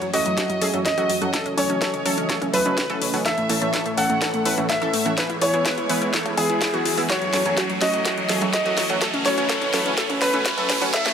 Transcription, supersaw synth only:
0.14 F#3 C#4 A4 E5
0.38 F#3 C#4 A4 E5
0.61 F#3 C#4 A4 E5
0.74 F#3 C#4 A4 E5
0.98 F#3 C#4 A4 E5
1.22 F#3 C#4 A4 F#5
1.34 F#3 C#4 A4 E5
1.58 F#3 C#4 A4 G#5
1.70 F#3 C#4 A4 G#5
1.82 F#3 C#4 A4 G#5
2.06 F#3 C#4 A4 E5
2.30 F#3 C#4 A4 E5
2.54 F#3 C#4 A4 E5
2.66 F#3 C#4 A4 E5
2.90 F#3 C#4 A4 E5
3.14 F#3 C#4 A4 F#5
3.25 E3 C#4 A4 E5
3.50 E3 C#4 A4 A5
3.62 E3 C#4 A4 A5
3.74 E3 C#4 A4 A5
3.98 E3 C#4 A4 E5
4.21 E3 C#4 A4 E5
4.46 E3 C#4 A4 E5
4.58 E3 C#4 A4 E5
4.82 E3 C#4 A4 E5
5.06 E3 C#4 A4 F#5
5.18 E3 B3 G#4 E5
5.42 E3 B3 G#4 G#5
5.54 E3 B3 G#4 G#5
5.66 E3 B3 G#4 G#5
5.90 E3 B3 G#4 E5
6.14 E3 B3 G#4 E5
6.38 E3 B3 G#4 E5
6.74 E3 B3 G#4 G#5
6.98 E3 B3 G#4 E5
7.09 F#3 C#4 A4 E5
7.33 F#3 C#4 A4 G#5
7.46 F#3 C#4 A4 G#5
7.57 F#3 C#4 A4 G#5
7.81 F#3 C#4 A4 E5
8.05 F#3 C#4 A4 E5
8.29 F#3 C#4 A4 E5
8.42 F#3 C#4 A4 E5
8.65 F#3 C#4 A4 E5
8.90 F#3 C#4 A4 F#5
9.01 F#3 C#4 A4 E5
9.25 F#3 C#4 A4 G#5
9.38 F#3 C#4 A4 G#5
9.49 F#3 C#4 A4 G#5
9.73 F#3 C#4 A4 E5
9.97 F#3 C#4 A4 E5
10.21 F#3 C#4 A4 E5
10.34 F#3 C#4 A4 E5
10.58 F#3 C#4 A4 E5
10.82 F#3 C#4 A4 F#5
10.93 E3 C#4 A4 E5

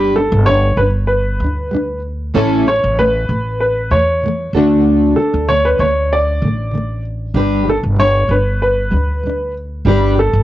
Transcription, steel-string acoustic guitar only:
Already playing: G3 D4 G4 B4
0.15 G3 D4
0.46 G3 D4
0.77 G3 D4
1.41 G3 D4
1.71 G3 D4
2.34 A2 E3 A3 C#4 E4 A4
2.66 A2 E3 A3
2.97 A2 E3 A3
3.28 A2 E3 A3
3.91 A2 E3 A3
4.22 A2 E3 A3
4.55 D3 A3 D4 F#4 A4
5.16 D3 A3
5.48 D3 A3
5.78 D3
5.82 A3
6.41 D3 A3
6.71 D3 A3
7.35 G3 D4 G4 B4
7.65 G3 D4
7.96 G3 D4
8.28 G3 D4
8.91 G3 D4
9.23 G3 D4
9.86 G3 D4 G4 B4
10.17 G3 D4

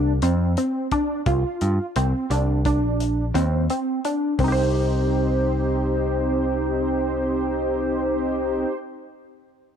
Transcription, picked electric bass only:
Already playing: C2
0.22 F2
1.26 C2
1.62 G2
1.96 C2
2.30 C2
2.82 A#1
3.34 D#2
4.39 C2

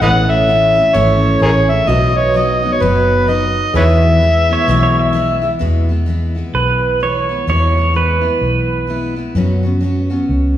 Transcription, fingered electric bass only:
0.01 A1
0.95 G#1
1.41 A1
1.88 B1
2.81 F#1
3.74 E2
4.68 B1
5.61 E2
6.54 B1
7.47 E2
8.41 B1
9.35 F#2
10.29 C#2

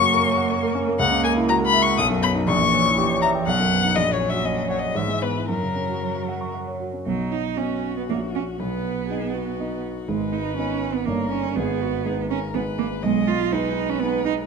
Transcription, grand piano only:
Already playing: F#2 C#3 A#3 C#4
0.01 F#4
0.12 A#4
0.26 C#5
0.37 F#5
0.50 C#5
0.63 A#4
0.75 C#4
0.87 A#3
0.99 C#2
1.11 C#3
1.24 A#3
1.36 E4
1.49 F#4
1.61 A#4
1.73 E5
1.86 F#5
1.98 B1
2.10 F#2
2.22 B3
2.35 D#4
2.48 A#1
2.60 A#2
2.73 C#4
2.85 E4
2.98 G4
3.10 C#5
3.22 E5
3.35 G5
3.47 B1
3.60 F#2
3.72 B3
3.84 D#4
3.96 A#1
4.07 A#2
4.20 C#4
4.33 F#4
4.44 C#4
4.57 C#5
4.70 F#5
4.82 C#5
4.95 G#2
5.08 G#3
5.22 B3
5.35 E4
5.49 F#2
5.62 C#3
5.75 C#4
5.89 F#4
6.02 C#5
6.15 F#4
6.28 F#5
6.41 C#6
6.54 F#5
6.67 C#5
6.80 F#4
6.93 C#4
7.06 B1 B2
7.58 B3 F#4 D#5
8.08 A#1 A#2 C#4 F#4 E5
8.60 B1 B2
9.10 B3 D#4 D#5
9.59 B3 D#4 D#5
10.08 G#1 G#2
10.58 B3 D#4 D#5
11.07 G1 G2 A#3 D#4 C#5
11.56 G#1 G#2
12.06 G#3 D#4 B4
12.54 G#3 D#4 B4
13.03 B1 B2
13.52 G#3 D#4 B4
14.02 G#3 D#4 B4

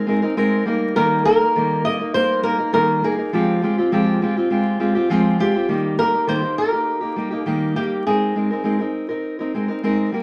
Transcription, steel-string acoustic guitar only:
0.07 G#3 C4 D#4 A#4
0.22 C4 D#4 A#4
0.37 G#3 C4 D#4 A#4
0.65 G3 A#3 D#4 A#4
0.96 D#3 G3 A#3 D#4 A#4
1.25 G3 A#3 D#4 A#4
1.41 A#3 D#4 A#4
1.55 D#3 G3 A#3 D#4 A#4
1.85 G3 A#3 D#4 A#4
2.00 A#3 D#4 A#4
2.14 G3 A#3 D#4 A#4
2.43 G3 A#3 D#4 A#4
2.58 A#3 D#4 A#4
2.73 D#3 G3 A#3 D#4 A#4
3.03 G3 A#3 D#4 A#4
3.17 A#3 D#4 A#4
3.33 F3 G#3 C4 F4 G4
3.62 G#3 C4 F4 G4
3.78 C4 F4 G4
3.92 F3 G#3 C4 F4 G4
4.22 G#3 C4 F4 G4
4.36 C4 F4 G4
4.50 G#3 C4 F4 G4
4.79 G#3 C4 F4 G4
4.95 C4 F4 G4
5.10 F3 G#3 C4 F4 G4
5.39 G#3 C4 F4 G4
5.54 C4 F4 G4
5.68 D#3 G3 A#3 D#4 G4
5.98 G3 A#3 D#4 G4
6.13 A#3 D#4 G4
6.27 D#3 G3 A#3 D#4 G4
6.42 A#3 D#4 G4
6.72 A#3 D#4 G4
7.01 A#3 D#4 G4
7.16 G3 A#3 D#4 G4
7.31 A#3 D#4 G4
7.46 D#3 G3 A#3 D#4 G4
7.75 G3 A#3 D#4 G4
8.06 G#3 C4 D#4 A#4
8.35 G#3 C4 D#4 A#4
8.51 C4 D#4 A#4
8.64 G#3 C4 D#4 A#4
8.79 C4 D#4 A#4
9.09 C4 D#4 A#4
9.39 C4 D#4 A#4
9.54 G#3 C4 D#4 A#4
9.68 C4 D#4 A#4
9.83 G#3 C4 D#4 A#4
10.12 G3 A#3 G4 A#4

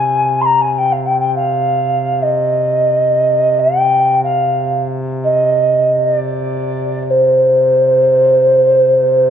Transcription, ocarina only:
Already playing: G#5
0.41 A#5 C6
0.61 G#5
0.78 G5
0.92 F5
1.06 G5
1.19 G5
1.35 F5
2.22 D#5
3.59 G5
4.23 F5
5.23 D#5
6.04 D#5
6.15 D5
7.02 D5
7.10 C5

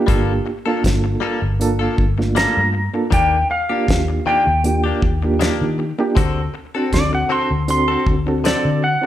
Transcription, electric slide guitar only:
Already playing: F5
2.37 A#5
3.14 G5
3.51 F5
4.27 G5
6.94 D5
7.15 F#5
7.32 C6
7.70 C6
8.46 D5
8.84 F#5

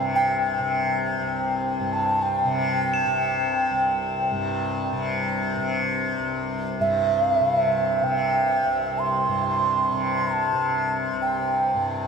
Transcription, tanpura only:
Already playing: C2 G2 C3
0.59 C3
1.20 C2
1.80 G2
2.45 C3
3.06 C3
3.71 C2
4.32 G2
4.93 C3
5.57 C3
6.19 C2
6.80 G2
7.40 C3
8.02 C3
8.66 C2
9.28 G2
9.92 C3
10.53 C3
11.13 C2
11.74 G2

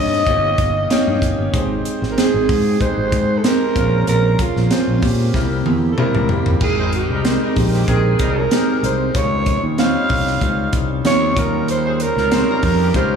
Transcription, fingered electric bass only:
Already playing: G2
0.27 G1
0.58 G1
1.07 G2
1.22 F#1
1.39 G1
1.53 G#1
2.02 G#1
2.34 G#1
2.49 G#2
2.97 G#1
3.12 G#2
3.76 A#1
4.08 A#1
4.56 A#1
4.88 A#1
5.03 A#2
5.34 C2
5.66 E2
6.15 C#2
6.29 F#1
6.47 G1
6.61 G#1
7.10 C2
7.57 A#1
7.88 A#1
8.19 C2
8.83 C2
9.15 C#2
9.64 D#2
10.10 C2
10.41 C#2
10.73 C2
11.04 D#2
11.37 D#2
12.16 C#2
12.63 F2
12.94 C#2

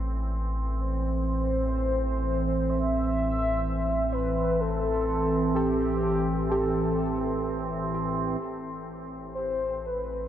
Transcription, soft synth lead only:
0.81 C5
2.69 E5
4.12 B4
4.60 A4
5.55 G4
6.49 A4
9.35 C5
9.86 B4

